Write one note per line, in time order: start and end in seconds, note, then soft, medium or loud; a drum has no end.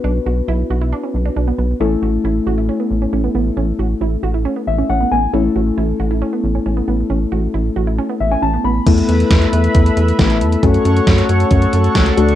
0.00 1.77 B3 medium
0.00 1.77 D4 medium
0.00 1.77 F#4 medium
0.00 1.77 B4 medium
0.04 0.20 B1 loud
0.04 0.19 D4 medium
0.26 0.42 B1 loud
0.26 0.41 F#4 medium
0.48 0.64 B1 loud
0.48 0.63 E4 medium
0.70 0.93 B1 loud
0.70 0.78 F#4 medium
0.82 0.89 E4 medium
0.93 1.00 D4 medium
1.04 1.18 C#4 medium
1.14 1.30 B1 medium
1.26 1.33 D4 medium
1.36 1.52 B1 loud
1.36 1.44 D4 medium
1.48 1.55 B3 medium
1.58 1.74 B1 loud
1.58 1.74 B3 medium
1.80 1.96 A1 loud
1.80 5.29 A3 medium
1.80 5.30 C#4 medium
1.80 1.96 C#4 medium
1.80 5.30 E4 medium
1.80 5.30 A4 medium
2.02 2.18 A1 loud
2.02 2.18 F#4 medium
2.24 2.40 A1 loud
2.24 2.40 E4 medium
2.47 2.70 A1 loud
2.47 2.54 F#4 medium
2.58 2.65 E4 medium
2.69 2.76 C#4 medium
2.80 2.95 B3 medium
2.91 3.06 A1 loud
3.02 3.09 C#4 medium
3.13 3.28 A1 medium
3.13 3.20 C#4 medium
3.24 3.31 B3 medium
3.35 3.50 A1 loud
3.35 3.50 B3 medium
3.57 3.72 A1 loud
3.57 3.72 C#4 medium
3.79 3.94 A1 loud
3.79 3.94 F#4 medium
4.01 4.17 A1 loud
4.01 4.16 E4 medium
4.23 4.46 A1 medium
4.23 4.31 F#4 medium
4.34 4.42 E4 medium
4.45 4.53 C#4 medium
4.56 4.71 B3 medium
4.67 4.83 A1 loud
4.67 4.88 E5 medium
4.78 4.86 C#4 medium
4.89 5.05 A1 loud
4.89 4.97 C#4 medium
4.89 5.10 F#5 medium
5.01 5.08 B3 medium
5.11 5.27 A1 medium
5.11 5.27 B3 medium
5.11 5.32 G#5 medium
5.33 5.49 A1 loud
5.33 8.82 A3 medium
5.33 8.82 C#4 medium
5.33 5.49 C#4 medium
5.33 8.82 E4 medium
5.33 8.82 A4 medium
5.56 5.71 A1 loud
5.56 5.71 F#4 medium
5.78 5.93 A1 loud
5.78 5.93 E4 medium
6.00 6.23 A1 medium
6.00 6.07 F#4 medium
6.11 6.18 E4 medium
6.22 6.29 C#4 medium
6.33 6.48 B3 medium
6.44 6.59 A1 medium
6.55 6.63 C#4 medium
6.66 6.81 A1 loud
6.66 6.73 C#4 medium
6.77 6.84 B3 medium
6.88 7.03 A1 loud
6.88 7.03 B3 medium
7.10 7.26 A1 loud
7.10 7.25 C#4 medium
7.32 7.48 A1 medium
7.32 7.47 F#4 medium
7.54 7.70 A1 loud
7.54 7.69 E4 medium
7.76 7.99 A1 medium
7.76 7.84 F#4 medium
7.87 7.95 E4 medium
7.98 8.06 C#4 medium
8.09 8.24 B3 medium
8.20 8.36 A1 loud
8.20 8.31 E5 medium
8.31 8.39 C#4 medium
8.31 8.42 G#5 medium
8.42 8.58 A1 medium
8.42 8.50 C#4 medium
8.42 8.63 A5 medium
8.53 8.61 B3 medium
8.64 8.80 A1 loud
8.64 8.79 B3 medium
8.64 8.85 B5 medium
8.87 9.02 E2 loud
8.87 10.16 A3 medium
8.87 10.16 B3 medium
8.87 10.16 E4 medium
8.87 12.35 A4 medium
8.87 10.16 A4 medium
8.87 10.61 B4 medium
8.87 10.61 E5 medium
8.87 10.61 B5 medium
8.87 kick loud
8.87 closed hi-hat medium
8.87 crash loud
8.98 closed hi-hat soft
9.09 9.24 E2 loud
9.09 closed hi-hat medium
9.20 closed hi-hat medium
9.30 9.46 E2 loud
9.30 kick loud
9.30 snare loud
9.30 closed hi-hat medium
9.42 closed hi-hat medium
9.53 9.68 E2 loud
9.53 closed hi-hat medium
9.64 closed hi-hat medium
9.75 9.90 E2 loud
9.75 kick loud
9.75 closed hi-hat medium
9.86 closed hi-hat medium
9.97 10.12 E2 loud
9.97 closed hi-hat medium
10.08 closed hi-hat soft
10.19 10.42 A1 medium
10.19 10.62 A3 medium
10.19 10.63 B3 medium
10.19 10.63 E4 medium
10.19 10.62 A4 medium
10.19 kick loud
10.19 snare loud
10.19 closed hi-hat medium
10.30 closed hi-hat medium
10.41 10.56 E2 medium
10.41 closed hi-hat medium
10.52 closed hi-hat medium
10.63 10.78 F#2 loud
10.63 12.14 A3 medium
10.63 12.14 C#4 medium
10.63 12.14 F#4 medium
10.63 12.14 A4 medium
10.63 12.16 C#5 medium
10.63 12.35 F#5 medium
10.63 12.35 C#6 medium
10.63 kick loud
10.63 closed hi-hat medium
10.74 closed hi-hat soft
10.85 11.01 F#2 loud
10.85 closed hi-hat medium
10.96 closed hi-hat medium
11.07 11.22 F#2 loud
11.07 kick loud
11.07 snare loud
11.07 closed hi-hat medium
11.18 closed hi-hat medium
11.29 11.45 F#2 medium
11.29 closed hi-hat medium
11.40 closed hi-hat medium
11.51 11.67 F#2 loud
11.51 kick loud
11.51 closed hi-hat medium
11.62 closed hi-hat medium
11.73 11.89 F#2 loud
11.73 closed hi-hat medium
11.84 closed hi-hat medium
11.95 12.11 C#2 loud
11.95 kick loud
11.95 snare loud
11.95 closed hi-hat medium
12.06 closed hi-hat medium
12.17 12.35 D2 loud
12.17 12.35 A3 medium
12.17 12.35 D4 medium
12.17 12.35 F#4 medium
12.17 12.35 A4 medium
12.17 12.35 D5 medium
12.17 closed hi-hat medium
12.29 closed hi-hat medium